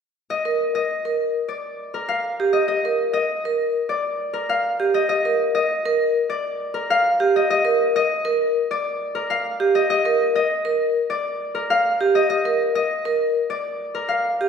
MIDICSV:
0, 0, Header, 1, 3, 480
1, 0, Start_track
1, 0, Tempo, 600000
1, 240, Time_signature, 4, 2, 24, 8
1, 11590, End_track
2, 0, Start_track
2, 0, Title_t, "Harp"
2, 0, Program_c, 0, 46
2, 241, Note_on_c, 0, 75, 60
2, 589, Note_off_c, 0, 75, 0
2, 599, Note_on_c, 0, 75, 57
2, 1188, Note_on_c, 0, 74, 44
2, 1552, Note_on_c, 0, 70, 45
2, 1668, Note_on_c, 0, 77, 63
2, 2013, Note_off_c, 0, 75, 0
2, 2023, Note_on_c, 0, 75, 54
2, 2134, Note_off_c, 0, 75, 0
2, 2143, Note_on_c, 0, 75, 60
2, 2498, Note_off_c, 0, 75, 0
2, 2507, Note_on_c, 0, 75, 59
2, 3103, Note_off_c, 0, 74, 0
2, 3113, Note_on_c, 0, 74, 48
2, 3458, Note_off_c, 0, 70, 0
2, 3468, Note_on_c, 0, 70, 50
2, 3585, Note_off_c, 0, 77, 0
2, 3595, Note_on_c, 0, 77, 61
2, 3945, Note_off_c, 0, 75, 0
2, 3954, Note_on_c, 0, 75, 64
2, 4063, Note_off_c, 0, 75, 0
2, 4073, Note_on_c, 0, 75, 68
2, 4428, Note_off_c, 0, 75, 0
2, 4438, Note_on_c, 0, 75, 66
2, 5026, Note_off_c, 0, 74, 0
2, 5036, Note_on_c, 0, 74, 53
2, 5383, Note_off_c, 0, 70, 0
2, 5392, Note_on_c, 0, 70, 53
2, 5513, Note_off_c, 0, 77, 0
2, 5522, Note_on_c, 0, 77, 74
2, 5878, Note_off_c, 0, 75, 0
2, 5888, Note_on_c, 0, 75, 64
2, 5994, Note_off_c, 0, 75, 0
2, 6003, Note_on_c, 0, 75, 69
2, 6356, Note_off_c, 0, 75, 0
2, 6366, Note_on_c, 0, 75, 69
2, 6957, Note_off_c, 0, 74, 0
2, 6966, Note_on_c, 0, 74, 58
2, 7309, Note_off_c, 0, 70, 0
2, 7319, Note_on_c, 0, 70, 55
2, 7431, Note_off_c, 0, 77, 0
2, 7441, Note_on_c, 0, 77, 74
2, 7790, Note_off_c, 0, 75, 0
2, 7800, Note_on_c, 0, 75, 68
2, 7910, Note_off_c, 0, 75, 0
2, 7920, Note_on_c, 0, 75, 71
2, 8274, Note_off_c, 0, 75, 0
2, 8284, Note_on_c, 0, 75, 71
2, 8869, Note_off_c, 0, 74, 0
2, 8878, Note_on_c, 0, 74, 57
2, 9227, Note_off_c, 0, 70, 0
2, 9237, Note_on_c, 0, 70, 49
2, 9352, Note_off_c, 0, 77, 0
2, 9361, Note_on_c, 0, 77, 68
2, 9711, Note_off_c, 0, 75, 0
2, 9720, Note_on_c, 0, 75, 63
2, 9828, Note_off_c, 0, 75, 0
2, 9838, Note_on_c, 0, 75, 65
2, 10193, Note_off_c, 0, 75, 0
2, 10202, Note_on_c, 0, 75, 64
2, 10789, Note_off_c, 0, 74, 0
2, 10799, Note_on_c, 0, 74, 54
2, 11147, Note_off_c, 0, 70, 0
2, 11156, Note_on_c, 0, 70, 49
2, 11258, Note_off_c, 0, 77, 0
2, 11268, Note_on_c, 0, 77, 61
2, 11590, Note_off_c, 0, 70, 0
2, 11590, Note_off_c, 0, 74, 0
2, 11590, Note_off_c, 0, 75, 0
2, 11590, Note_off_c, 0, 77, 0
2, 11590, End_track
3, 0, Start_track
3, 0, Title_t, "Vibraphone"
3, 0, Program_c, 1, 11
3, 363, Note_on_c, 1, 70, 46
3, 517, Note_off_c, 1, 70, 0
3, 842, Note_on_c, 1, 70, 45
3, 997, Note_off_c, 1, 70, 0
3, 1919, Note_on_c, 1, 67, 51
3, 2075, Note_off_c, 1, 67, 0
3, 2281, Note_on_c, 1, 70, 47
3, 2436, Note_off_c, 1, 70, 0
3, 2762, Note_on_c, 1, 70, 48
3, 2917, Note_off_c, 1, 70, 0
3, 3837, Note_on_c, 1, 67, 50
3, 3995, Note_off_c, 1, 67, 0
3, 4203, Note_on_c, 1, 70, 50
3, 4357, Note_off_c, 1, 70, 0
3, 4685, Note_on_c, 1, 70, 53
3, 4838, Note_off_c, 1, 70, 0
3, 5761, Note_on_c, 1, 67, 58
3, 5916, Note_off_c, 1, 67, 0
3, 6118, Note_on_c, 1, 70, 55
3, 6275, Note_off_c, 1, 70, 0
3, 6600, Note_on_c, 1, 70, 56
3, 6756, Note_off_c, 1, 70, 0
3, 7681, Note_on_c, 1, 67, 58
3, 7836, Note_off_c, 1, 67, 0
3, 8043, Note_on_c, 1, 70, 56
3, 8197, Note_off_c, 1, 70, 0
3, 8520, Note_on_c, 1, 70, 53
3, 8676, Note_off_c, 1, 70, 0
3, 9604, Note_on_c, 1, 67, 56
3, 9757, Note_off_c, 1, 67, 0
3, 9963, Note_on_c, 1, 70, 51
3, 10117, Note_off_c, 1, 70, 0
3, 10443, Note_on_c, 1, 70, 53
3, 10597, Note_off_c, 1, 70, 0
3, 11527, Note_on_c, 1, 67, 52
3, 11590, Note_off_c, 1, 67, 0
3, 11590, End_track
0, 0, End_of_file